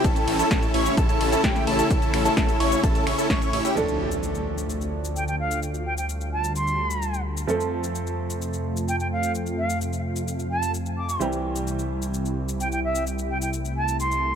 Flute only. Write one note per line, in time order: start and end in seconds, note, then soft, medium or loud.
5.16 5.24 G5 medium
5.28 5.35 G5 medium
5.39 5.59 F5 medium
5.86 5.93 G5 medium
5.97 6.05 G5 medium
6.32 6.53 A5 medium
6.56 7.21 C6 medium
8.88 8.96 G5 medium
9.00 9.07 G5 medium
9.11 9.32 F5 medium
9.58 9.78 F5 medium
10.51 10.71 A5 medium
10.97 11.25 D6 medium
12.60 12.68 G5 medium
12.72 12.79 G5 medium
12.84 13.04 E5 medium
13.30 13.37 G5 medium
13.42 13.49 G5 medium
13.76 13.97 A5 medium
14.00 14.35 C6 medium